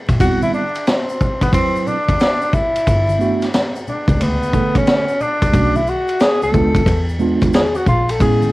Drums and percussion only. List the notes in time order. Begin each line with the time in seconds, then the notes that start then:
0.09 kick, ride, shaker
0.20 kick, ride, shaker
0.42 high conga, shaker
0.54 shaker
0.75 ride, shaker
0.87 snare, hi-hat pedal, ride, shaker
1.09 shaker
1.21 kick, low conga, shaker
1.41 kick, ride, high conga, shaker
1.53 kick, ride, shaker
1.76 shaker
1.87 low conga, shaker
2.08 kick, ride, high conga, shaker
2.20 snare, hi-hat pedal, ride, high conga, shaker
2.41 shaker
2.53 kick, low conga, shaker
2.75 ride, shaker
2.87 kick, ride, shaker
3.09 high conga, shaker
3.21 shaker
3.42 snare, ride, shaker
3.54 snare, hi-hat pedal, ride, shaker
3.76 shaker
3.87 low conga, shaker
4.08 kick, ride, high conga, shaker
4.21 ride, shaker
4.43 shaker
4.53 kick, low conga, shaker
4.75 kick, ride, high conga, shaker
4.87 snare, hi-hat pedal, ride, high conga, shaker
5.08 shaker
5.20 low conga, shaker
5.42 kick, ride, shaker
5.53 kick, ride, shaker
5.76 high conga, shaker
5.87 shaker
6.08 ride, shaker
6.20 snare, hi-hat pedal, ride, shaker
6.42 shaker
6.54 kick, low conga, shaker
6.75 kick, ride, high conga, shaker
6.86 kick, ride, shaker
7.09 shaker
7.20 low conga, shaker
7.42 kick, ride, high conga, shaker
7.53 snare, hi-hat pedal, ride, high conga, shaker
7.75 shaker
7.87 kick, low conga, shaker
8.09 ride, shaker
8.20 kick, ride, shaker
8.42 high conga, shaker